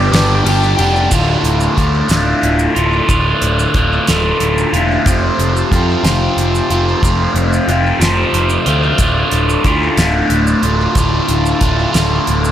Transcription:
Already playing: overdriven electric guitar G3 B3 D4 G4, tonewheel organ B4 D5 G5 A5
0.12 picked electric bass G1, overdriven electric guitar G3 B3 D4 G4, snare, ride
0.45 picked electric bass G1, overdriven electric guitar G3 B3 D4 G4, ride
0.63 maracas
0.77 picked electric bass F1, overdriven electric guitar B3 D4 G4, ride
0.81 overdriven electric guitar G3
0.96 maracas
1.10 picked electric bass D1, overdriven electric guitar D2 A2 D3 A3 F4, tonewheel organ A4 D5 F5 A5, kick, crash, maracas
1.43 picked electric bass D1, closed hi-hat, maracas
1.60 maracas
1.75 picked electric bass D2, overdriven electric guitar A2 D3 A3 F4, kick, closed hi-hat, maracas
2.08 picked electric bass D1, overdriven electric guitar D2 A2 D3 A3 F4, snare, closed hi-hat, maracas
2.43 picked electric bass D1, closed hi-hat
2.59 maracas
2.75 picked electric bass D1, overdriven electric guitar D3 A3 F4, closed hi-hat
3.07 picked electric bass D1, overdriven electric guitar D2 A2 D3 A3 F4, kick, closed hi-hat, maracas
3.42 picked electric bass D1, closed hi-hat, maracas
3.59 maracas
3.74 picked electric bass D1, overdriven electric guitar A2 D3 A3 F4, kick, closed hi-hat, maracas
4.07 picked electric bass D1, overdriven electric guitar A2 D3 A3 F4, snare, closed hi-hat, maracas
4.12 overdriven electric guitar D2
4.40 picked electric bass D1, closed hi-hat
4.58 maracas
4.73 picked electric bass E1, overdriven electric guitar D3 A3 F4, closed hi-hat
5.06 picked electric bass F1, overdriven electric guitar F2 C3 F3 A3 C4 F4, tonewheel organ C5 A5, kick, closed hi-hat, maracas
5.39 picked electric bass F1, closed hi-hat, maracas
5.56 maracas
5.72 picked electric bass F2, overdriven electric guitar F3 A3 C4 F4, kick, closed hi-hat, maracas
6.03 picked electric bass F1, overdriven electric guitar F2 C3 F3 A3 C4 F4, snare, closed hi-hat, maracas
6.37 picked electric bass F1, closed hi-hat
6.55 maracas
6.70 picked electric bass F1, overdriven electric guitar F3 A3 C4 F4, closed hi-hat
7.01 picked electric bass F1, overdriven electric guitar F2 C3 F3, tonewheel organ B5, kick, closed hi-hat, maracas
7.05 overdriven electric guitar A3 C4 F4
7.34 picked electric bass F1, closed hi-hat
7.53 maracas
7.68 picked electric bass F1, overdriven electric guitar F3 A3 C4 F4, closed hi-hat, maracas
8.00 picked electric bass F1, overdriven electric guitar F2 C3 F3 A3 C4 F4, snare, closed hi-hat, maracas
8.33 picked electric bass F1, closed hi-hat
8.50 maracas
8.66 picked electric bass D2, overdriven electric guitar F3 A3 C4 F4, closed hi-hat
8.97 picked electric bass D1, overdriven electric guitar D2 A2 D3, tonewheel organ D5 F5 A5, kick, closed hi-hat, maracas
9.01 overdriven electric guitar A3 F4
9.31 picked electric bass D1, closed hi-hat, maracas
9.50 maracas
9.64 picked electric bass D2, overdriven electric guitar A2 D3 A3 F4, kick, closed hi-hat, maracas
9.97 picked electric bass D1, overdriven electric guitar D2 A2 D3 A3 F4, snare, closed hi-hat, maracas
10.30 picked electric bass D1, closed hi-hat
10.47 maracas
10.62 picked electric bass D1, overdriven electric guitar D3 A3 F4, closed hi-hat
10.95 picked electric bass D1, overdriven electric guitar D2 A2 D3 A3 F4, kick, closed hi-hat, maracas
11.29 picked electric bass D1, closed hi-hat, maracas
11.46 maracas
11.60 picked electric bass D1, overdriven electric guitar A2 D3 A3 F4, kick, closed hi-hat, maracas
11.93 picked electric bass D1, overdriven electric guitar D2 A2 D3 A3 F4, snare, closed hi-hat, maracas
12.27 picked electric bass D1, closed hi-hat
12.45 maracas

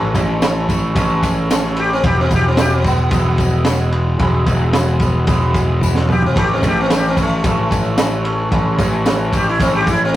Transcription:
Already playing: picked electric bass A1, clean electric guitar A2 E3 A3 C#4 E4, sitar E3 A3
0.14 picked electric bass A1, clean electric guitar A3 C#4 E4, kick, ride, tambourine
0.40 clean electric guitar E3 A3 C#4 E4, snare, ride, tambourine
0.67 clean electric guitar A3 C#4 E4, kick, ride, tambourine
0.94 picked electric bass A1, clean electric guitar A2 E3 A3 C#4 E4, kick, ride, tambourine
1.23 kick, ride, tambourine
1.49 clean electric guitar E3 A3 C#4 E4, snare, ride, tambourine
1.64 snare
1.76 clean electric guitar A3 C#4 E4, sitar G4, ride
1.93 sitar C4
2.03 picked electric bass E1, clean electric guitar E3 G#3 B3 E4, sitar G4, kick, ride, tambourine
2.21 sitar C4
2.31 picked electric bass E1, clean electric guitar G#3 B3 E4, kick, ride, tambourine
2.35 sitar G4
2.48 sitar C4
2.57 clean electric guitar E3 G#3 B3 E4, sitar G4, snare, ride, tambourine
2.74 sitar C4
2.84 sitar B3, clean electric guitar B3 E4, kick, ride, tambourine
2.89 clean electric guitar G#3
3.11 picked electric bass E1, clean electric guitar E3 G#3 B3 E4, kick, ride, tambourine
3.38 kick, ride, tambourine
3.63 clean electric guitar E3 G#3 B3 E4, snare, ride, tambourine
3.92 clean electric guitar G#3 B3 E4, ride
4.19 picked electric bass E1, clean electric guitar E3 G#3 B3 E4, kick, ride, tambourine
4.46 picked electric bass E1, clean electric guitar G#3 B3 E4, kick, ride, tambourine
4.72 clean electric guitar E3 G#3 B3 E4, snare, ride, tambourine
5.00 clean electric guitar G#3 B3 E4, kick, ride, tambourine
5.26 picked electric bass E1, clean electric guitar E3 G#3 B3 E4, kick, ride, tambourine
5.54 kick, ride, tambourine
5.81 clean electric guitar E3 G#3 B3 E4, kick, tambourine
5.95 snare
6.08 clean electric guitar G#3 B3 E4, mid tom, tambourine
6.12 sitar G4
6.22 sitar C4, floor tom
6.34 picked electric bass A1, clean electric guitar A2 E3 A3 C#4 E4, kick, ride, tambourine, splash
6.39 sitar G4
6.53 sitar C4
6.62 picked electric bass A1, clean electric guitar A3 C#4 E4, kick, ride, tambourine
6.68 sitar G4
6.81 sitar C4
6.90 clean electric guitar E3 A3 C#4 E4, snare, ride, tambourine
6.97 sitar G4
7.08 sitar C4
7.17 clean electric guitar A3 C#4 E4, kick, ride, tambourine
7.22 sitar A3
7.44 picked electric bass A1, clean electric guitar A2 E3 A3 C#4 E4, kick, ride, tambourine
7.71 kick, ride, tambourine
7.96 clean electric guitar E3 A3 C#4 E4, snare, ride, tambourine
8.24 clean electric guitar A3 C#4 E4, ride
8.51 picked electric bass A1, clean electric guitar A2 E3 A3 C#4 E4, kick, ride, tambourine
8.78 picked electric bass A1, clean electric guitar A3 C#4 E4, kick, ride, tambourine
9.05 clean electric guitar E3 A3 C#4 E4, snare, ride, tambourine
9.32 clean electric guitar A3 C#4 E4, kick, ride, tambourine
9.37 sitar G4
9.49 sitar E4
9.59 picked electric bass A1, clean electric guitar A2 E3 A3 C#4 E4, sitar C4, kick, ride, tambourine
9.76 sitar G4
9.87 sitar E4, kick, ride, tambourine
10.05 sitar C4

